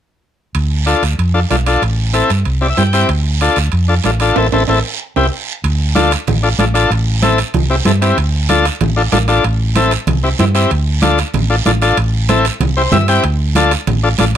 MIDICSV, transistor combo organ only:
0, 0, Header, 1, 2, 480
1, 0, Start_track
1, 0, Tempo, 317125
1, 834, Time_signature, 4, 2, 24, 8
1, 21752, End_track
2, 0, Start_track
2, 0, Title_t, "Transistor combo organ"
2, 0, Program_c, 0, 18
2, 1305, Note_on_c, 0, 62, 73
2, 1311, Note_on_c, 0, 65, 67
2, 1319, Note_on_c, 0, 69, 81
2, 1564, Note_off_c, 0, 62, 0
2, 1566, Note_off_c, 0, 65, 0
2, 1570, Note_off_c, 0, 69, 0
2, 2030, Note_on_c, 0, 62, 62
2, 2033, Note_on_c, 0, 65, 59
2, 2040, Note_on_c, 0, 69, 74
2, 2119, Note_off_c, 0, 62, 0
2, 2120, Note_off_c, 0, 65, 0
2, 2124, Note_off_c, 0, 69, 0
2, 2280, Note_on_c, 0, 62, 69
2, 2284, Note_on_c, 0, 65, 68
2, 2288, Note_on_c, 0, 69, 79
2, 2364, Note_off_c, 0, 62, 0
2, 2366, Note_off_c, 0, 65, 0
2, 2368, Note_off_c, 0, 69, 0
2, 2523, Note_on_c, 0, 62, 67
2, 2530, Note_on_c, 0, 65, 68
2, 2539, Note_on_c, 0, 69, 78
2, 2763, Note_off_c, 0, 62, 0
2, 2766, Note_off_c, 0, 65, 0
2, 2771, Note_off_c, 0, 69, 0
2, 3232, Note_on_c, 0, 60, 75
2, 3237, Note_on_c, 0, 64, 69
2, 3250, Note_on_c, 0, 69, 83
2, 3490, Note_off_c, 0, 60, 0
2, 3493, Note_off_c, 0, 64, 0
2, 3500, Note_off_c, 0, 69, 0
2, 3954, Note_on_c, 0, 60, 67
2, 3958, Note_on_c, 0, 64, 56
2, 3960, Note_on_c, 0, 74, 62
2, 3963, Note_on_c, 0, 67, 64
2, 4044, Note_off_c, 0, 60, 0
2, 4046, Note_off_c, 0, 64, 0
2, 4049, Note_off_c, 0, 67, 0
2, 4075, Note_off_c, 0, 74, 0
2, 4083, Note_on_c, 0, 76, 62
2, 4195, Note_on_c, 0, 60, 69
2, 4196, Note_off_c, 0, 76, 0
2, 4198, Note_on_c, 0, 64, 68
2, 4205, Note_on_c, 0, 79, 64
2, 4207, Note_on_c, 0, 67, 74
2, 4285, Note_off_c, 0, 60, 0
2, 4286, Note_off_c, 0, 64, 0
2, 4291, Note_off_c, 0, 67, 0
2, 4445, Note_on_c, 0, 60, 66
2, 4446, Note_on_c, 0, 64, 64
2, 4453, Note_on_c, 0, 67, 80
2, 4654, Note_off_c, 0, 79, 0
2, 4687, Note_off_c, 0, 60, 0
2, 4688, Note_off_c, 0, 64, 0
2, 4691, Note_off_c, 0, 67, 0
2, 5168, Note_on_c, 0, 62, 80
2, 5172, Note_on_c, 0, 65, 71
2, 5178, Note_on_c, 0, 69, 80
2, 5422, Note_off_c, 0, 62, 0
2, 5424, Note_off_c, 0, 65, 0
2, 5427, Note_off_c, 0, 69, 0
2, 5877, Note_on_c, 0, 62, 63
2, 5888, Note_on_c, 0, 65, 53
2, 5895, Note_on_c, 0, 69, 67
2, 5969, Note_off_c, 0, 62, 0
2, 5974, Note_off_c, 0, 65, 0
2, 5978, Note_off_c, 0, 69, 0
2, 6132, Note_on_c, 0, 62, 75
2, 6139, Note_on_c, 0, 65, 61
2, 6142, Note_on_c, 0, 69, 78
2, 6216, Note_off_c, 0, 62, 0
2, 6220, Note_off_c, 0, 65, 0
2, 6221, Note_off_c, 0, 69, 0
2, 6372, Note_on_c, 0, 62, 72
2, 6381, Note_on_c, 0, 65, 63
2, 6381, Note_on_c, 0, 69, 82
2, 6599, Note_off_c, 0, 69, 0
2, 6613, Note_off_c, 0, 62, 0
2, 6617, Note_on_c, 0, 60, 82
2, 6617, Note_on_c, 0, 64, 83
2, 6617, Note_on_c, 0, 69, 87
2, 6618, Note_off_c, 0, 65, 0
2, 6770, Note_off_c, 0, 60, 0
2, 6770, Note_off_c, 0, 64, 0
2, 6770, Note_off_c, 0, 69, 0
2, 6861, Note_on_c, 0, 60, 87
2, 6861, Note_on_c, 0, 64, 84
2, 6863, Note_on_c, 0, 69, 87
2, 7012, Note_off_c, 0, 64, 0
2, 7013, Note_off_c, 0, 60, 0
2, 7013, Note_off_c, 0, 69, 0
2, 7101, Note_on_c, 0, 64, 83
2, 7102, Note_on_c, 0, 60, 81
2, 7104, Note_on_c, 0, 69, 91
2, 7253, Note_off_c, 0, 60, 0
2, 7253, Note_off_c, 0, 64, 0
2, 7255, Note_off_c, 0, 69, 0
2, 7819, Note_on_c, 0, 60, 81
2, 7820, Note_on_c, 0, 64, 91
2, 7820, Note_on_c, 0, 67, 73
2, 7972, Note_off_c, 0, 60, 0
2, 7973, Note_off_c, 0, 64, 0
2, 7973, Note_off_c, 0, 67, 0
2, 9008, Note_on_c, 0, 62, 74
2, 9010, Note_on_c, 0, 65, 69
2, 9021, Note_on_c, 0, 69, 92
2, 9265, Note_off_c, 0, 62, 0
2, 9266, Note_off_c, 0, 65, 0
2, 9272, Note_off_c, 0, 69, 0
2, 9731, Note_on_c, 0, 62, 67
2, 9740, Note_on_c, 0, 65, 66
2, 9745, Note_on_c, 0, 69, 78
2, 9819, Note_off_c, 0, 62, 0
2, 9823, Note_off_c, 0, 65, 0
2, 9826, Note_off_c, 0, 69, 0
2, 9974, Note_on_c, 0, 62, 74
2, 9985, Note_on_c, 0, 65, 62
2, 9991, Note_on_c, 0, 69, 88
2, 10060, Note_off_c, 0, 62, 0
2, 10066, Note_off_c, 0, 65, 0
2, 10069, Note_off_c, 0, 69, 0
2, 10202, Note_on_c, 0, 62, 75
2, 10211, Note_on_c, 0, 65, 67
2, 10221, Note_on_c, 0, 69, 78
2, 10450, Note_off_c, 0, 62, 0
2, 10455, Note_off_c, 0, 65, 0
2, 10460, Note_off_c, 0, 69, 0
2, 10934, Note_on_c, 0, 60, 81
2, 10938, Note_on_c, 0, 64, 73
2, 10946, Note_on_c, 0, 69, 87
2, 11188, Note_off_c, 0, 60, 0
2, 11190, Note_off_c, 0, 64, 0
2, 11194, Note_off_c, 0, 69, 0
2, 11654, Note_on_c, 0, 60, 67
2, 11662, Note_on_c, 0, 64, 59
2, 11666, Note_on_c, 0, 67, 81
2, 11740, Note_off_c, 0, 60, 0
2, 11744, Note_off_c, 0, 64, 0
2, 11746, Note_off_c, 0, 67, 0
2, 11898, Note_on_c, 0, 60, 72
2, 11905, Note_on_c, 0, 64, 69
2, 11911, Note_on_c, 0, 69, 81
2, 11981, Note_off_c, 0, 60, 0
2, 11985, Note_off_c, 0, 64, 0
2, 11988, Note_off_c, 0, 69, 0
2, 12133, Note_on_c, 0, 60, 67
2, 12136, Note_on_c, 0, 64, 60
2, 12140, Note_on_c, 0, 67, 83
2, 12375, Note_off_c, 0, 60, 0
2, 12376, Note_off_c, 0, 64, 0
2, 12379, Note_off_c, 0, 67, 0
2, 12853, Note_on_c, 0, 62, 88
2, 12858, Note_on_c, 0, 65, 75
2, 12861, Note_on_c, 0, 69, 85
2, 13106, Note_off_c, 0, 62, 0
2, 13109, Note_off_c, 0, 65, 0
2, 13110, Note_off_c, 0, 69, 0
2, 13568, Note_on_c, 0, 62, 66
2, 13576, Note_on_c, 0, 65, 62
2, 13580, Note_on_c, 0, 69, 78
2, 13655, Note_off_c, 0, 62, 0
2, 13659, Note_off_c, 0, 65, 0
2, 13661, Note_off_c, 0, 69, 0
2, 13808, Note_on_c, 0, 62, 75
2, 13814, Note_on_c, 0, 65, 71
2, 13817, Note_on_c, 0, 69, 90
2, 13895, Note_off_c, 0, 62, 0
2, 13898, Note_off_c, 0, 65, 0
2, 13900, Note_off_c, 0, 69, 0
2, 14046, Note_on_c, 0, 62, 77
2, 14056, Note_on_c, 0, 65, 67
2, 14059, Note_on_c, 0, 69, 86
2, 14290, Note_off_c, 0, 62, 0
2, 14295, Note_off_c, 0, 65, 0
2, 14297, Note_off_c, 0, 69, 0
2, 14768, Note_on_c, 0, 60, 82
2, 14779, Note_on_c, 0, 64, 74
2, 14783, Note_on_c, 0, 69, 87
2, 15022, Note_off_c, 0, 60, 0
2, 15028, Note_off_c, 0, 64, 0
2, 15030, Note_off_c, 0, 69, 0
2, 15490, Note_on_c, 0, 60, 65
2, 15496, Note_on_c, 0, 64, 59
2, 15504, Note_on_c, 0, 67, 76
2, 15574, Note_off_c, 0, 60, 0
2, 15578, Note_off_c, 0, 64, 0
2, 15582, Note_off_c, 0, 67, 0
2, 15729, Note_on_c, 0, 60, 76
2, 15738, Note_on_c, 0, 67, 78
2, 15741, Note_on_c, 0, 64, 62
2, 15814, Note_off_c, 0, 60, 0
2, 15818, Note_off_c, 0, 67, 0
2, 15820, Note_off_c, 0, 64, 0
2, 15962, Note_on_c, 0, 60, 71
2, 15964, Note_on_c, 0, 64, 70
2, 15971, Note_on_c, 0, 67, 84
2, 16206, Note_off_c, 0, 60, 0
2, 16207, Note_off_c, 0, 64, 0
2, 16210, Note_off_c, 0, 67, 0
2, 16678, Note_on_c, 0, 62, 85
2, 16686, Note_on_c, 0, 65, 74
2, 16690, Note_on_c, 0, 69, 89
2, 16935, Note_off_c, 0, 62, 0
2, 16939, Note_off_c, 0, 65, 0
2, 16941, Note_off_c, 0, 69, 0
2, 17406, Note_on_c, 0, 62, 64
2, 17408, Note_on_c, 0, 65, 70
2, 17413, Note_on_c, 0, 69, 71
2, 17491, Note_off_c, 0, 62, 0
2, 17491, Note_off_c, 0, 65, 0
2, 17494, Note_off_c, 0, 69, 0
2, 17648, Note_on_c, 0, 62, 72
2, 17650, Note_on_c, 0, 65, 72
2, 17656, Note_on_c, 0, 69, 89
2, 17731, Note_off_c, 0, 62, 0
2, 17732, Note_off_c, 0, 65, 0
2, 17735, Note_off_c, 0, 69, 0
2, 17887, Note_on_c, 0, 62, 75
2, 17889, Note_on_c, 0, 65, 71
2, 17898, Note_on_c, 0, 69, 79
2, 18126, Note_off_c, 0, 62, 0
2, 18127, Note_off_c, 0, 65, 0
2, 18132, Note_off_c, 0, 69, 0
2, 18601, Note_on_c, 0, 60, 85
2, 18607, Note_on_c, 0, 64, 69
2, 18613, Note_on_c, 0, 69, 87
2, 18854, Note_off_c, 0, 60, 0
2, 18857, Note_off_c, 0, 64, 0
2, 18860, Note_off_c, 0, 69, 0
2, 19325, Note_on_c, 0, 60, 62
2, 19327, Note_on_c, 0, 72, 72
2, 19335, Note_on_c, 0, 64, 67
2, 19338, Note_on_c, 0, 67, 75
2, 19407, Note_off_c, 0, 60, 0
2, 19412, Note_off_c, 0, 64, 0
2, 19414, Note_off_c, 0, 67, 0
2, 19547, Note_off_c, 0, 72, 0
2, 19548, Note_on_c, 0, 60, 80
2, 19558, Note_on_c, 0, 64, 63
2, 19561, Note_on_c, 0, 67, 82
2, 19561, Note_on_c, 0, 76, 73
2, 19639, Note_off_c, 0, 60, 0
2, 19643, Note_off_c, 0, 64, 0
2, 19645, Note_off_c, 0, 67, 0
2, 19784, Note_off_c, 0, 76, 0
2, 19801, Note_on_c, 0, 60, 75
2, 19807, Note_on_c, 0, 64, 62
2, 19809, Note_on_c, 0, 79, 72
2, 19813, Note_on_c, 0, 67, 86
2, 20028, Note_off_c, 0, 79, 0
2, 20041, Note_off_c, 0, 60, 0
2, 20043, Note_off_c, 0, 64, 0
2, 20046, Note_off_c, 0, 67, 0
2, 20521, Note_on_c, 0, 62, 78
2, 20525, Note_on_c, 0, 65, 74
2, 20528, Note_on_c, 0, 69, 85
2, 20771, Note_off_c, 0, 62, 0
2, 20773, Note_off_c, 0, 65, 0
2, 20775, Note_off_c, 0, 69, 0
2, 21240, Note_on_c, 0, 62, 66
2, 21249, Note_on_c, 0, 65, 70
2, 21252, Note_on_c, 0, 69, 82
2, 21322, Note_off_c, 0, 62, 0
2, 21326, Note_off_c, 0, 65, 0
2, 21328, Note_off_c, 0, 69, 0
2, 21483, Note_on_c, 0, 62, 81
2, 21489, Note_on_c, 0, 65, 67
2, 21498, Note_on_c, 0, 69, 89
2, 21563, Note_off_c, 0, 62, 0
2, 21566, Note_off_c, 0, 65, 0
2, 21571, Note_off_c, 0, 69, 0
2, 21752, End_track
0, 0, End_of_file